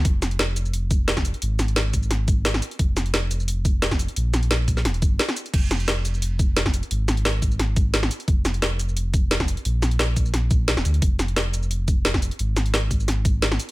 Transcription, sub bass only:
X:1
M:4/4
L:1/16
Q:"Swing 16ths" 1/4=175
K:Bbmix
V:1 name="Sub bass" clef=bass
F,,,12- F,,,3 z | A,,,12- A,,,2 z2 | F,,,12- F,,,3 z | B,,,8 E,,,2 G,,,2 z4 |
F,,,12- F,,,3 z | A,,,12- A,,,2 z2 | F,,,12- F,,,3 z | B,,,12- B,,, F,,, D,,2 |
F,,,12- F,,,3 z | A,,,12- A,,,2 z2 |]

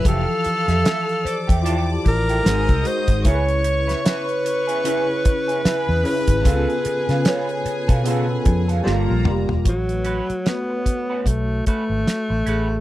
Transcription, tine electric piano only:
X:1
M:4/4
L:1/16
Q:"Swing 16ths" 1/4=75
K:A
V:1 name="Tine electric piano"
[E,=F,=GA]6- [E,F,GA] z [E=FGa]4 [^G,^D^F^B]2 [G,DF_B]2 | [C,CE_B=B]6- [C,CE_B=B] z [C,CEB]6 [C,CEB]2 | [C,B,^EA]6- [C,B,EA] z [C,B,EA]4 [=G,_B,=F=G]2 [G,FG_B]2 | [A,FBc]4 [A,FBc]6- [A,FBc] z4 z |]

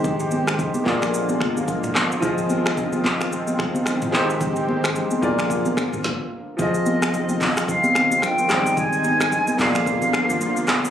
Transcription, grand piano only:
X:1
M:4/4
L:1/8
Q:"Swing 16ths" 1/4=110
K:Fdor
V:1 name="Grand piano"
[A,EGc]3 [B,FAd]4- [B,FAd] | [F,FAe]6- [F,FAe] [A,EGc]- | [A,EGc]3 [B,FAd]3 z2 | [F,FAe]6- [F,FAe] [G,A,Ec]- |
[G,A,Ec]3 [B,FAd]4- [B,FAd] |]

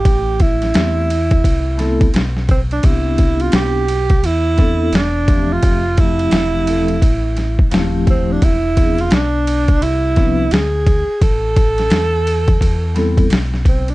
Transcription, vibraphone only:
X:1
M:4/4
L:1/8
Q:"Swing 16ths" 1/4=86
K:Am
V:1 name="Vibraphone"
z2 [A,B,CEG] z2 [A,B,CEA] z2 | [B,CDEG]3 z2 [B,CDEA] z [F,A,CGe] | z [F,A,CEG]2 [F,A,CEA] z2 [F,A,CEG]2 | z [F,B,CD^G] z3 [F,B,CDB] z2 |
z4 z [G,B,CEA] z2 |]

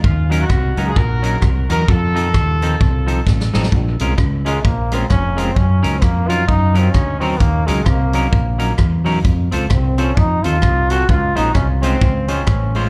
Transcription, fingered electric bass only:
X:1
M:4/4
L:1/8
Q:"Swing" 1/4=130
K:Bbm
V:1 name="Fingered electric bass" clef=bass
E,,2 C,, D,, B,,,2 C,, =E,, | F,,2 E,,2 C,,2 =A,,, A,,, | B,,, C,, D,,2 B,,,2 F,,,2 | G,, D,, F,,2 G,,2 =D,,2 |
E,, D,, C,,2 B,,,2 =E,,2 | F,, D,, C,,2 F,, E,, C,,2 | D,, B,,, C,,2 D,,2 =A,,,2 |]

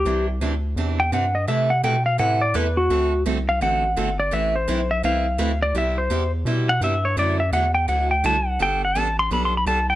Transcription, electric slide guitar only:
X:1
M:4/4
L:1/8
Q:"Swing" 1/4=169
K:Dmix
V:1 name="Electric slide guitar"
G z4 g f _e | e f g =f ^f d B F- | F2 z =f ^f3 d | e c2 e =f3 d |
e c2 z2 f e ^c | d e f g f g a f | g f a c' (3b c' b a g |]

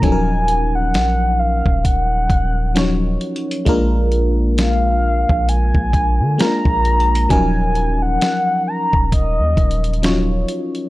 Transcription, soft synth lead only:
X:1
M:4/4
L:1/16
Q:"Swing 16ths" 1/4=66
K:Ebm
V:1 name="Soft synth lead"
a3 g3 f2 g6 z2 | z4 f4 a4 b4 | a3 g3 b2 e6 z2 |]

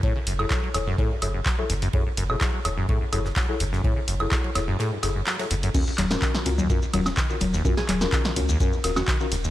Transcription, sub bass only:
X:1
M:4/4
L:1/8
Q:1/4=126
K:Ebm
V:1 name="Sub bass" clef=bass
z G,,, z _F,,, z G,,, z G,,, | z G,,, z _F,,, z G,,, z G,,, | z G,,, z _F,,, z G,,, z G,,, | z E,,, z D,, z E,,, z E,,, |
z E,,, z D,, z E,,, z E,,, |]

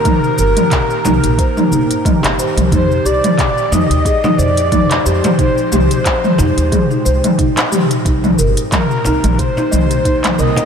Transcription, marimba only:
X:1
M:4/4
L:1/16
Q:"Swing 16ths" 1/4=90
K:Fdor
V:1 name="Marimba"
E2 B4 E z c E E z e G c z | E2 G4 E z A E c2 E z G2 | E2 G4 E z A E c2 E z G2 | E2 B4 E z c E e2 E z B2 |]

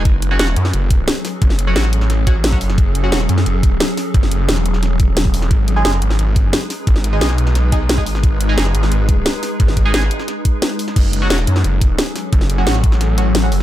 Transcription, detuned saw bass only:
X:1
M:4/4
L:1/8
Q:1/4=176
K:F#dor
V:1 name="Detuned saw bass" clef=bass
F,,,2 E,,, F,, F,,,2 z2 | F,,,2 A,,,4- A,,, F,,, | F,,,2 E,,, F,, F,,,2 z2 | F,,,2 E,,,6 |
G,,,2 F,,, G,,, G,,,2 z2 | G,,,2 B,,,4- B,,, G,,, | G,,,2 F,,, G,,, G,,,2 z2 | G,,,2 G,,, z4 z |
F,,,2 E,,, F,, F,,,2 z2 | F,,,2 A,,,4- A,,, F,,, |]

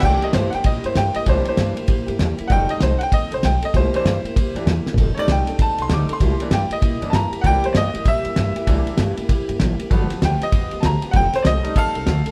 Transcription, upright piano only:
X:1
M:4/4
L:1/8
Q:"Swing" 1/4=194
K:Cmix
V:1 name="Upright piano"
[^fg] _e c [fg] e c g e | c c4 z3 | [^fg] _e c [fg] e c g e | c c4 z3 |
z [_d=d] g2 a c' d' c'- | c' z g _e3 [ab]2 | [^fg] c [d_e]2 =e4- | e2 z6 |
z2 g _e3 [ab]2 | [^fg] c [d_e]2 [A=f]4 |]
V:2 name="Upright piano"
[E,B,D]8 | [E,B,D]3 z4 z | [G,A,_E]3 z4 z | z [E,B,D] z3 [E,B,D] z2 |
z [G,A,_E]4- [G,A,E] [G,A,E] z | z [E,B,D] z3 [E,B,D] z2 | [E,B,d]8 | [E,B,D]3 z4 z |
[F,A,=B,]3 z4 z | z3 [G,A,_E]3 z2 |]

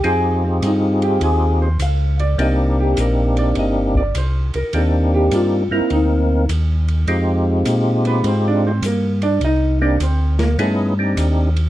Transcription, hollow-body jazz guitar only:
X:1
M:4/4
L:1/8
Q:"Swing" 1/4=102
K:Cm
V:1 name="Hollow-body jazz guitar"
A C E G A c f d | e G B d e d c B | =A G F =E _E2 z2 | z3 [=B,=B] (3[Cc] [Dd] [Cc] [_B,_B] [Dd] |
[Ee] [Dd] [Cc] [B,B] [=A,=A]3 z |]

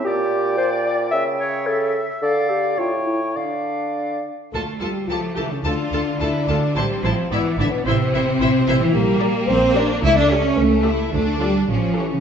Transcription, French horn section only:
X:1
M:2/4
L:1/16
Q:1/4=109
K:Dm
V:1 name="French horn section"
z8 | z8 | z8 | z8 |
A2 G2 F2 E ^C | D8 | G2 F2 E2 D =B, | C6- C E |
G4 c2 d2 | e d ^c2 A4 | A2 G2 F2 E ^C |]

